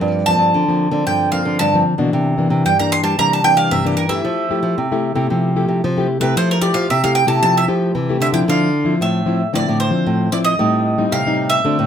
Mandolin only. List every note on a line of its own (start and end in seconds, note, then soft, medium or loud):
0.26 1.02 A5 loud
1.07 1.31 G5 medium
1.32 1.58 F5 medium
1.59 1.75 A5 medium
2.66 2.79 G5 medium
2.79 2.92 A#5 medium
2.92 3.03 C6 loud
3.04 3.17 A5 medium
3.19 3.32 A#5 loud
3.33 3.44 A5 medium
3.44 3.57 G5 medium
3.57 3.70 F5 medium
3.71 3.84 E5 medium
3.86 3.96 G4 medium
3.97 4.10 A#4 medium
4.09 5.38 E5 medium
6.21 6.35 B4 medium
6.37 6.49 C5 loud
6.51 6.61 A#4 medium
6.61 6.75 D5 loud
6.74 6.88 F5 medium
6.90 7.02 E5 medium
7.04 7.15 F5 medium
7.15 7.28 G5 medium
7.28 7.41 A5 medium
7.43 7.55 A5 medium
7.58 7.65 E5 medium
8.22 8.27 E5 medium
8.34 8.39 G5 medium
8.49 8.98 F5 loud
9.02 9.50 E5 medium
9.55 9.80 D5 medium
9.80 10.32 C5 medium
10.32 10.37 D5 medium
10.44 11.13 D#5 medium
11.12 11.49 F5 medium
11.50 11.87 E5 medium